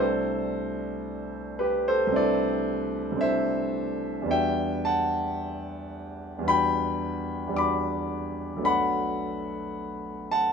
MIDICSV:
0, 0, Header, 1, 2, 480
1, 0, Start_track
1, 0, Time_signature, 4, 2, 24, 8
1, 0, Key_signature, 1, "minor"
1, 0, Tempo, 1069519
1, 1440, Tempo, 1094891
1, 4648, End_track
2, 0, Start_track
2, 0, Title_t, "Grand piano"
2, 0, Program_c, 0, 0
2, 0, Control_c, 0, 64, 127
2, 0, Note_on_c, 0, 36, 44
2, 0, Note_on_c, 0, 57, 34
2, 0, Note_on_c, 0, 60, 34
2, 0, Note_on_c, 0, 62, 30
2, 0, Note_on_c, 0, 64, 35
2, 0, Note_on_c, 0, 69, 57
2, 0, Note_on_c, 0, 72, 74
2, 7, Control_c, 0, 64, 0
2, 81, Control_c, 0, 64, 127
2, 702, Note_off_c, 0, 69, 0
2, 714, Note_on_c, 0, 71, 67
2, 719, Note_off_c, 0, 72, 0
2, 720, Note_on_c, 0, 67, 54
2, 833, Note_off_c, 0, 67, 0
2, 838, Note_off_c, 0, 71, 0
2, 843, Note_on_c, 0, 72, 79
2, 846, Note_on_c, 0, 69, 63
2, 923, Note_off_c, 0, 36, 0
2, 927, Note_off_c, 0, 57, 0
2, 930, Note_off_c, 0, 60, 0
2, 930, Note_on_c, 0, 36, 45
2, 935, Note_off_c, 0, 62, 0
2, 939, Note_off_c, 0, 64, 0
2, 940, Note_on_c, 0, 57, 37
2, 950, Note_on_c, 0, 60, 34
2, 956, Note_off_c, 0, 69, 0
2, 958, Note_on_c, 0, 62, 39
2, 963, Note_off_c, 0, 72, 0
2, 969, Note_on_c, 0, 64, 40
2, 970, Note_on_c, 0, 74, 82
2, 973, Note_on_c, 0, 69, 57
2, 1394, Note_off_c, 0, 36, 0
2, 1400, Note_on_c, 0, 36, 38
2, 1406, Note_off_c, 0, 57, 0
2, 1413, Note_on_c, 0, 57, 35
2, 1414, Note_off_c, 0, 60, 0
2, 1420, Note_on_c, 0, 60, 36
2, 1422, Note_off_c, 0, 62, 0
2, 1429, Note_off_c, 0, 69, 0
2, 1429, Note_on_c, 0, 62, 35
2, 1430, Note_off_c, 0, 64, 0
2, 1440, Note_on_c, 0, 64, 36
2, 1440, Note_on_c, 0, 76, 85
2, 1445, Note_off_c, 0, 74, 0
2, 1445, Note_on_c, 0, 72, 61
2, 1882, Note_on_c, 0, 40, 42
2, 1886, Note_off_c, 0, 36, 0
2, 1891, Note_on_c, 0, 55, 37
2, 1893, Note_off_c, 0, 57, 0
2, 1896, Note_off_c, 0, 60, 0
2, 1901, Note_off_c, 0, 62, 0
2, 1901, Note_on_c, 0, 59, 41
2, 1906, Note_off_c, 0, 64, 0
2, 1906, Note_off_c, 0, 72, 0
2, 1910, Note_on_c, 0, 62, 36
2, 1916, Note_off_c, 0, 76, 0
2, 1918, Note_on_c, 0, 66, 38
2, 1922, Note_on_c, 0, 79, 86
2, 1923, Note_on_c, 0, 76, 60
2, 1928, Control_c, 0, 64, 0
2, 1992, Control_c, 0, 64, 127
2, 2149, Note_off_c, 0, 76, 0
2, 2159, Note_on_c, 0, 81, 78
2, 2166, Note_off_c, 0, 79, 0
2, 2166, Note_on_c, 0, 78, 64
2, 2827, Note_off_c, 0, 40, 0
2, 2833, Note_on_c, 0, 40, 44
2, 2837, Note_off_c, 0, 55, 0
2, 2844, Note_on_c, 0, 55, 35
2, 2845, Note_off_c, 0, 59, 0
2, 2852, Note_on_c, 0, 59, 41
2, 2855, Note_off_c, 0, 62, 0
2, 2862, Note_on_c, 0, 62, 34
2, 2865, Note_off_c, 0, 66, 0
2, 2870, Note_off_c, 0, 78, 0
2, 2872, Note_on_c, 0, 66, 38
2, 2874, Note_on_c, 0, 83, 94
2, 2879, Note_on_c, 0, 79, 61
2, 2884, Note_off_c, 0, 81, 0
2, 3304, Note_off_c, 0, 40, 0
2, 3311, Note_on_c, 0, 40, 38
2, 3312, Note_off_c, 0, 55, 0
2, 3318, Note_on_c, 0, 55, 38
2, 3321, Note_off_c, 0, 59, 0
2, 3328, Note_on_c, 0, 59, 37
2, 3331, Note_off_c, 0, 62, 0
2, 3338, Note_on_c, 0, 62, 35
2, 3342, Note_off_c, 0, 66, 0
2, 3342, Note_off_c, 0, 79, 0
2, 3350, Note_on_c, 0, 66, 36
2, 3350, Note_on_c, 0, 86, 82
2, 3351, Note_off_c, 0, 83, 0
2, 3358, Note_on_c, 0, 83, 58
2, 3787, Note_on_c, 0, 35, 38
2, 3795, Note_on_c, 0, 57, 38
2, 3798, Note_off_c, 0, 40, 0
2, 3798, Note_off_c, 0, 59, 0
2, 3802, Note_off_c, 0, 55, 0
2, 3805, Note_on_c, 0, 59, 34
2, 3809, Note_off_c, 0, 62, 0
2, 3815, Note_off_c, 0, 66, 0
2, 3815, Note_on_c, 0, 62, 33
2, 3819, Note_off_c, 0, 83, 0
2, 3822, Note_on_c, 0, 66, 37
2, 3826, Note_on_c, 0, 83, 84
2, 3830, Note_on_c, 0, 78, 62
2, 3833, Note_off_c, 0, 86, 0
2, 3847, Control_c, 0, 64, 0
2, 3919, Control_c, 0, 64, 127
2, 4537, Note_off_c, 0, 78, 0
2, 4553, Note_off_c, 0, 83, 0
2, 4555, Note_on_c, 0, 81, 90
2, 4561, Note_on_c, 0, 78, 61
2, 4648, Note_off_c, 0, 35, 0
2, 4648, Note_off_c, 0, 57, 0
2, 4648, Note_off_c, 0, 59, 0
2, 4648, Note_off_c, 0, 62, 0
2, 4648, Note_off_c, 0, 66, 0
2, 4648, Note_off_c, 0, 78, 0
2, 4648, Note_off_c, 0, 81, 0
2, 4648, End_track
0, 0, End_of_file